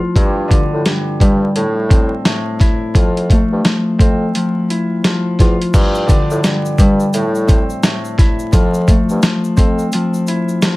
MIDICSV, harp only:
0, 0, Header, 1, 2, 480
1, 0, Start_track
1, 0, Tempo, 697674
1, 108, Time_signature, 4, 2, 24, 8
1, 7408, End_track
2, 0, Start_track
2, 0, Title_t, "Harp"
2, 0, Program_c, 0, 46
2, 0, Note_on_c, 0, 53, 87
2, 0, Note_on_c, 0, 57, 75
2, 0, Note_on_c, 0, 60, 89
2, 0, Note_on_c, 0, 64, 86
2, 0, Note_on_c, 0, 65, 75
2, 112, Note_on_c, 0, 43, 85
2, 142, Note_off_c, 0, 53, 0
2, 329, Note_on_c, 0, 50, 83
2, 583, Note_off_c, 0, 43, 0
2, 591, Note_on_c, 0, 43, 77
2, 728, Note_off_c, 0, 57, 0
2, 830, Note_on_c, 0, 55, 93
2, 964, Note_off_c, 0, 60, 0
2, 1071, Note_on_c, 0, 45, 70
2, 1102, Note_off_c, 0, 43, 0
2, 1102, Note_off_c, 0, 50, 0
2, 1102, Note_off_c, 0, 55, 0
2, 1189, Note_off_c, 0, 64, 0
2, 1300, Note_on_c, 0, 60, 78
2, 1553, Note_off_c, 0, 45, 0
2, 1561, Note_on_c, 0, 45, 90
2, 1610, Note_off_c, 0, 65, 0
2, 1790, Note_on_c, 0, 64, 85
2, 2025, Note_on_c, 0, 53, 87
2, 2062, Note_off_c, 0, 45, 0
2, 2066, Note_off_c, 0, 64, 0
2, 2281, Note_on_c, 0, 57, 76
2, 2498, Note_off_c, 0, 53, 0
2, 2506, Note_on_c, 0, 53, 70
2, 2739, Note_off_c, 0, 60, 0
2, 2741, Note_on_c, 0, 60, 89
2, 2988, Note_off_c, 0, 53, 0
2, 2996, Note_on_c, 0, 53, 66
2, 3233, Note_on_c, 0, 64, 85
2, 3467, Note_off_c, 0, 53, 0
2, 3476, Note_on_c, 0, 53, 85
2, 3716, Note_on_c, 0, 65, 76
2, 3954, Note_on_c, 0, 43, 83
2, 3982, Note_off_c, 0, 53, 0
2, 4170, Note_on_c, 0, 50, 84
2, 4424, Note_off_c, 0, 43, 0
2, 4433, Note_on_c, 0, 43, 76
2, 4571, Note_off_c, 0, 57, 0
2, 4670, Note_on_c, 0, 55, 94
2, 4805, Note_off_c, 0, 60, 0
2, 4911, Note_on_c, 0, 45, 75
2, 4942, Note_off_c, 0, 43, 0
2, 4942, Note_off_c, 0, 50, 0
2, 4942, Note_off_c, 0, 55, 0
2, 5030, Note_off_c, 0, 64, 0
2, 5141, Note_on_c, 0, 60, 80
2, 5392, Note_off_c, 0, 45, 0
2, 5401, Note_on_c, 0, 45, 90
2, 5452, Note_off_c, 0, 65, 0
2, 5629, Note_on_c, 0, 64, 92
2, 5862, Note_on_c, 0, 53, 90
2, 5902, Note_off_c, 0, 45, 0
2, 5904, Note_off_c, 0, 64, 0
2, 6119, Note_on_c, 0, 57, 77
2, 6337, Note_off_c, 0, 53, 0
2, 6345, Note_on_c, 0, 53, 75
2, 6577, Note_off_c, 0, 60, 0
2, 6580, Note_on_c, 0, 60, 87
2, 6827, Note_off_c, 0, 53, 0
2, 6835, Note_on_c, 0, 53, 72
2, 7072, Note_on_c, 0, 64, 88
2, 7308, Note_off_c, 0, 53, 0
2, 7316, Note_on_c, 0, 53, 90
2, 7408, Note_off_c, 0, 53, 0
2, 7408, Note_off_c, 0, 57, 0
2, 7408, Note_off_c, 0, 60, 0
2, 7408, Note_off_c, 0, 64, 0
2, 7408, End_track
0, 0, End_of_file